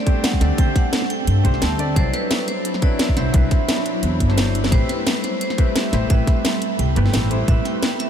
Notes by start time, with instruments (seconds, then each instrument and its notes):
Already playing: ambient pad G3 C4 D4 A4, grand piano A3 C4 D4 G4 C5, vibraphone D5
0.06 grand piano A3 C4 D4 G4 C5, kick, closed hi-hat
0.24 vibraphone F#5, snare, closed hi-hat
0.33 kick
0.40 upright bass D2, grand piano A3 C4 D4 G4 D5, snare, closed hi-hat
0.57 upright bass D2, grand piano A3 C4 D4 G4 C5, vibraphone G5, kick, closed hi-hat
0.76 vibraphone F#5, kick, snare, closed hi-hat
0.93 snare, closed hi-hat
1.02 snare
1.10 vibraphone G5, closed hi-hat
1.27 upright bass G2, vibraphone G5, closed hi-hat
1.44 upright bass C2, grand piano A3 C4 D4 G4 C5, kick, closed hi-hat
1.54 snare
1.62 upright bass D2, vibraphone A5, snare, closed hi-hat
1.78 grand piano A3 C4 D4 G4 D5, closed hi-hat
1.95 upright bass C2, grand piano F#3 C4 D4 E4 D5, ambient pad F#3 D4 E4 B5, vibraphone C5, kick, closed hi-hat
2.14 vibraphone B4, snare, closed hi-hat
2.31 snare, closed hi-hat
2.48 vibraphone C5, snare, closed hi-hat
2.65 closed hi-hat
2.74 snare
2.82 grand piano F#3 C4 D4 E4 B4, vibraphone D5, kick, closed hi-hat
2.99 snare, closed hi-hat
3.09 kick
3.16 upright bass C2, grand piano F#3 C4 D4 E4 C5, vibraphone E5, snare, closed hi-hat
3.32 upright bass C2, grand piano F#3 C4 D4 E4 B4, kick, closed hi-hat
3.51 kick, snare, closed hi-hat
3.69 snare, closed hi-hat
3.78 snare
3.86 closed hi-hat
4.03 upright bass E2, closed hi-hat
4.20 upright bass G1, kick, closed hi-hat
4.27 grand piano F#3 C4 D4 E4 C5, snare
4.38 snare, closed hi-hat
4.55 closed hi-hat
4.64 snare
4.70 upright bass A1, ambient pad G3 C4 A4 B5, grand piano A3 C4 E4 G4 B4, vibraphone C5, kick, closed hi-hat
4.89 vibraphone B4, snare, closed hi-hat
5.07 snare, closed hi-hat
5.24 vibraphone C5, snare, closed hi-hat
5.41 vibraphone C5, closed hi-hat
5.50 snare
5.58 grand piano A3 C4 E4 G4 B4, kick, closed hi-hat
5.76 vibraphone E5, snare, closed hi-hat
5.92 upright bass A1, grand piano A3 C4 E4 G4 C5, snare, closed hi-hat
6.08 upright bass A1, grand piano A3 C4 E4 G4 B4, vibraphone E5, kick, closed hi-hat
6.27 kick, snare, closed hi-hat
6.45 snare, closed hi-hat
6.62 closed hi-hat
6.79 upright bass C2, vibraphone G5, closed hi-hat
6.95 upright bass G1, grand piano A3 C4 E4 G4 B4, closed hi-hat
7.06 snare
7.14 upright bass A1, snare, closed hi-hat
7.30 grand piano A3 C4 E4 G4 C5, closed hi-hat
7.47 upright bass A1, grand piano A3 C4 E4 G4 B4, vibraphone E5, kick, closed hi-hat
7.65 vibraphone G5, snare, closed hi-hat
7.83 snare, closed hi-hat
7.99 vibraphone E5, snare, closed hi-hat